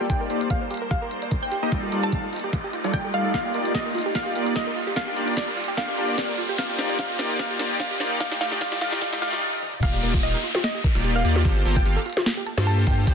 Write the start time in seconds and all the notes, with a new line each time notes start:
Already playing: A#3, riser
0.01 A#3 F4 G4 A4 D5
0.10 A#3 D#4 G4 C5 D5 G5, kick, closed hi-hat
0.21 A#4
0.30 A#3 D#4 G4 C5 D5, closed hi-hat
0.41 D5, closed hi-hat
0.50 A#3 D#4 G4 A#4 C5 F5, kick, closed hi-hat
0.61 C5
0.71 G4, closed hi-hat
0.74 closed hi-hat
0.77 closed hi-hat
0.82 A#4
0.91 G4 F5, kick, closed hi-hat
1.02 A#4
1.11 C5, closed hi-hat
1.22 D5, closed hi-hat
1.31 A#4, kick, closed hi-hat
1.43 C5 G5
1.52 G4, closed hi-hat
1.63 A#3 D#4 G4 A#4 C5 D#5
1.72 G3 A3 D#4 F4 G4 A4 D5, kick, closed hi-hat
1.83 G4
1.92 G3 D#4 F4 A4 D5, closed hi-hat
2.03 C5 A5, closed hi-hat
2.12 G3 D#4 F4 G4 A4 F5, kick, closed hi-hat
2.24 A4
2.33 F4, closed hi-hat
2.36 closed hi-hat
2.40 closed hi-hat
2.44 G4
2.53 F4, kick, closed hi-hat
2.64 G4
2.73 F4, closed hi-hat
2.84 G3 D#4 F4 A4 D5, closed hi-hat
2.94 D5 G5, kick, closed hi-hat
3.05 A4
3.14 G3 D#4 F4 A4 D5 D#5 F5, closed hi-hat
3.25 A4
3.34 G3 A#3 D#4 F4 G4 D5 F5, kick, snare, closed hi-hat
3.45 G4
3.54 A#3 D#4 F4 G4 A#4 D5, closed hi-hat
3.65 D5, closed hi-hat
3.75 A#3 D#4 F4 G4 D#5 F5, kick, snare, closed hi-hat
3.86 A#4
3.95 F4, closed hi-hat
3.98 closed hi-hat
4.02 closed hi-hat
4.06 G4
4.15 A#3 D#4 F4 G4 D5 F5, kick, snare, closed hi-hat
4.26 G4
4.35 A#3 D#4 F4 G4 A#4 D5, closed hi-hat
4.46 D5, closed hi-hat
4.56 A#3 D#4 F4 G4 D#5 F5, kick, snare, closed hi-hat
4.67 A#4
4.76 F4, open hi-hat
4.87 G4
4.96 A#3 D4 F4 G4 A4 C5 D5 F5, kick, snare, closed hi-hat
5.07 G4
5.17 A#3 D4 F4 G4 A#4 D5, closed hi-hat
5.28 D5, closed hi-hat
5.37 A#3 D4 F4 G4 D5 F5, kick, snare, closed hi-hat
5.48 A#4
5.57 F4, closed hi-hat
5.61 closed hi-hat
5.64 closed hi-hat
5.68 G4
5.77 A#3 D4 F4 G4 D5 F5, kick, snare, closed hi-hat
5.88 G4
5.98 A#3 D4 F4 G4 A#4 D5, closed hi-hat
6.09 D5, closed hi-hat
6.18 A#3 D4 F4 G4 D5 F5, kick, snare, closed hi-hat
6.29 A#4
6.38 F4, open hi-hat
6.49 G4
6.58 A#3 D#4 F4 G4 D5 F5, kick, snare, closed hi-hat
6.69 G4
6.79 A#3 D#4 F4 G4 A#4 D5, snare, closed hi-hat
6.90 D5, closed hi-hat
6.99 A#3 D#4 F4 G4 D5 F5, kick, snare, closed hi-hat
7.10 G4
7.19 A#3 D#4 F4 G4 A#4 D5, snare, closed hi-hat
7.23 closed hi-hat
7.26 closed hi-hat
7.30 D5
7.39 A#3 D#4 F4 G4 D5 F5, kick, snare, closed hi-hat
7.50 G4
7.59 A#3 D#4 F4 G4 A#4 D5, snare, closed hi-hat
7.71 D5, closed hi-hat
7.80 A#3 D#4 F4 G4 D5 F5, kick, snare, closed hi-hat
7.91 G4
8.00 A#3 D#4 F4 G4 A#4 D5, snare, open hi-hat
8.11 D5
8.20 A3 D#4 F4 G4 D5 F5, kick, snare, closed hi-hat
8.32 G4, snare
8.41 A3 D#4 F4 G4 D5 F5, snare, closed hi-hat
8.52 G4, snare, closed hi-hat
8.61 A3 D#4 F4 G4 D5 F5, kick, snare, closed hi-hat
8.72 G4, snare
8.81 A3 D#4 F4 G4 D5 F5, snare, closed hi-hat
8.85 closed hi-hat
8.88 closed hi-hat
8.92 G4, snare
9.02 A3 D#4 F4 G4 D5 F5, kick, snare, closed hi-hat, swell
9.13 G4, snare
9.22 A3 D#4 F4 G4 D5 F5, snare, closed hi-hat
9.33 G4, snare, closed hi-hat
9.62 high tom
9.73 mid tom
9.83 D#1 A#3 D#4 F4 G4 D5 F5, kick, closed hi-hat, crash, downlifter
9.94 G4
10.03 D#1 A#3 D#4 F4 G4 A#4 D5, closed hi-hat
10.14 F4, kick, closed hi-hat
10.23 D#1 A#3 D#4 F4 G4 D#5 F5, closed hi-hat
10.34 A#4
10.44 F4, closed hi-hat
10.47 closed hi-hat
10.50 closed hi-hat
10.55 G4, snare
10.64 F4 D#5, snare, closed hi-hat
10.75 G4
10.84 A#4, kick, closed hi-hat
10.95 D#1 A#3 D#4 F4 G4 D5, closed hi-hat
11.04 G4, closed hi-hat
11.15 A#4 F5
11.25 D#2 A#3 D#4 F4 G4 D5, open hi-hat
11.36 G4, snare
11.45 G1 A#3 F4 G4 A4 C5, kick, closed hi-hat
11.56 G4
11.65 G1 A#3 F4 G4 A4 C5, closed hi-hat
11.76 F4 G5, kick, closed hi-hat
11.85 G1 A#3 F4 G4 A4 F5, closed hi-hat
11.96 A4
12.06 F4, closed hi-hat
12.10 closed hi-hat
12.13 closed hi-hat
12.17 G4, snare
12.26 F4, snare, closed hi-hat
12.37 G4
12.46 A4, closed hi-hat
12.57 G2 A#3 F4 G4 A4 C5, snare, closed hi-hat
12.67 G4 A5, closed hi-hat
12.78 A4
12.87 G2 A#3 F4 G4 A4 C5 G5, kick, open hi-hat
12.98 G4
13.07 C2 A#3 D#4 G4 C5 D5 G5, kick, closed hi-hat